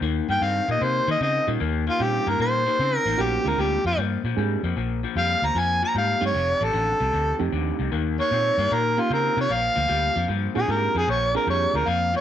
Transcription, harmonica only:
0, 0, Header, 1, 2, 480
1, 0, Start_track
1, 0, Tempo, 394737
1, 24, Time_signature, 4, 2, 24, 8
1, 14844, End_track
2, 0, Start_track
2, 0, Title_t, "Harmonica"
2, 0, Program_c, 0, 22
2, 378, Note_on_c, 0, 79, 108
2, 527, Note_on_c, 0, 77, 88
2, 545, Note_off_c, 0, 79, 0
2, 832, Note_off_c, 0, 77, 0
2, 863, Note_on_c, 0, 75, 78
2, 1005, Note_on_c, 0, 72, 86
2, 1023, Note_off_c, 0, 75, 0
2, 1311, Note_off_c, 0, 72, 0
2, 1348, Note_on_c, 0, 75, 83
2, 1480, Note_off_c, 0, 75, 0
2, 1488, Note_on_c, 0, 75, 91
2, 1793, Note_off_c, 0, 75, 0
2, 2304, Note_on_c, 0, 65, 95
2, 2456, Note_on_c, 0, 67, 89
2, 2474, Note_off_c, 0, 65, 0
2, 2787, Note_on_c, 0, 70, 79
2, 2806, Note_off_c, 0, 67, 0
2, 2920, Note_off_c, 0, 70, 0
2, 2937, Note_on_c, 0, 72, 96
2, 3618, Note_off_c, 0, 72, 0
2, 3618, Note_on_c, 0, 70, 96
2, 3912, Note_on_c, 0, 67, 89
2, 3930, Note_off_c, 0, 70, 0
2, 4237, Note_on_c, 0, 70, 90
2, 4255, Note_off_c, 0, 67, 0
2, 4384, Note_on_c, 0, 67, 92
2, 4402, Note_off_c, 0, 70, 0
2, 4682, Note_off_c, 0, 67, 0
2, 4702, Note_on_c, 0, 65, 95
2, 4838, Note_off_c, 0, 65, 0
2, 6296, Note_on_c, 0, 77, 93
2, 6633, Note_on_c, 0, 82, 78
2, 6651, Note_off_c, 0, 77, 0
2, 6796, Note_on_c, 0, 80, 81
2, 6814, Note_off_c, 0, 82, 0
2, 7089, Note_off_c, 0, 80, 0
2, 7110, Note_on_c, 0, 82, 79
2, 7242, Note_off_c, 0, 82, 0
2, 7272, Note_on_c, 0, 77, 80
2, 7567, Note_off_c, 0, 77, 0
2, 7609, Note_on_c, 0, 73, 83
2, 8073, Note_on_c, 0, 69, 96
2, 8091, Note_off_c, 0, 73, 0
2, 8986, Note_off_c, 0, 69, 0
2, 9980, Note_on_c, 0, 73, 107
2, 10619, Note_on_c, 0, 70, 88
2, 10637, Note_off_c, 0, 73, 0
2, 10948, Note_on_c, 0, 65, 72
2, 10966, Note_off_c, 0, 70, 0
2, 11082, Note_off_c, 0, 65, 0
2, 11109, Note_on_c, 0, 70, 78
2, 11405, Note_off_c, 0, 70, 0
2, 11437, Note_on_c, 0, 73, 93
2, 11584, Note_on_c, 0, 77, 111
2, 11602, Note_off_c, 0, 73, 0
2, 12499, Note_off_c, 0, 77, 0
2, 12865, Note_on_c, 0, 68, 96
2, 13020, Note_on_c, 0, 70, 91
2, 13039, Note_off_c, 0, 68, 0
2, 13321, Note_off_c, 0, 70, 0
2, 13346, Note_on_c, 0, 68, 91
2, 13481, Note_off_c, 0, 68, 0
2, 13500, Note_on_c, 0, 73, 95
2, 13801, Note_off_c, 0, 73, 0
2, 13816, Note_on_c, 0, 70, 78
2, 13956, Note_off_c, 0, 70, 0
2, 13985, Note_on_c, 0, 73, 88
2, 14304, Note_on_c, 0, 70, 79
2, 14322, Note_off_c, 0, 73, 0
2, 14461, Note_on_c, 0, 77, 84
2, 14479, Note_off_c, 0, 70, 0
2, 14762, Note_off_c, 0, 77, 0
2, 14791, Note_on_c, 0, 73, 86
2, 14844, Note_off_c, 0, 73, 0
2, 14844, End_track
0, 0, End_of_file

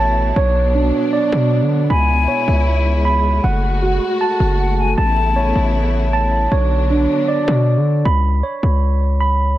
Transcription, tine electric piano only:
0, 0, Header, 1, 2, 480
1, 0, Start_track
1, 0, Tempo, 384615
1, 452, Time_signature, 4, 2, 24, 8
1, 11957, End_track
2, 0, Start_track
2, 0, Title_t, "Tine electric piano"
2, 0, Program_c, 0, 4
2, 0, Note_on_c, 0, 73, 87
2, 0, Note_on_c, 0, 81, 103
2, 437, Note_off_c, 0, 73, 0
2, 452, Note_on_c, 0, 73, 87
2, 453, Note_off_c, 0, 81, 0
2, 933, Note_on_c, 0, 62, 87
2, 1410, Note_on_c, 0, 74, 100
2, 2371, Note_off_c, 0, 74, 0
2, 2372, Note_off_c, 0, 62, 0
2, 2372, Note_off_c, 0, 73, 0
2, 2372, Note_on_c, 0, 83, 109
2, 2845, Note_on_c, 0, 73, 86
2, 3793, Note_off_c, 0, 83, 0
2, 3808, Note_on_c, 0, 83, 103
2, 4289, Note_off_c, 0, 73, 0
2, 4290, Note_off_c, 0, 83, 0
2, 4292, Note_on_c, 0, 78, 89
2, 4773, Note_on_c, 0, 66, 75
2, 5252, Note_on_c, 0, 81, 96
2, 6194, Note_off_c, 0, 81, 0
2, 6209, Note_on_c, 0, 81, 100
2, 6212, Note_off_c, 0, 66, 0
2, 6212, Note_off_c, 0, 78, 0
2, 6691, Note_on_c, 0, 73, 86
2, 7638, Note_off_c, 0, 81, 0
2, 7653, Note_on_c, 0, 81, 104
2, 8118, Note_off_c, 0, 73, 0
2, 8132, Note_off_c, 0, 81, 0
2, 8133, Note_on_c, 0, 73, 87
2, 8613, Note_on_c, 0, 62, 84
2, 9089, Note_on_c, 0, 74, 102
2, 10051, Note_off_c, 0, 74, 0
2, 10051, Note_on_c, 0, 83, 110
2, 10052, Note_off_c, 0, 62, 0
2, 10052, Note_off_c, 0, 73, 0
2, 10524, Note_on_c, 0, 73, 83
2, 11473, Note_off_c, 0, 83, 0
2, 11488, Note_on_c, 0, 83, 101
2, 11957, Note_off_c, 0, 73, 0
2, 11957, Note_off_c, 0, 83, 0
2, 11957, End_track
0, 0, End_of_file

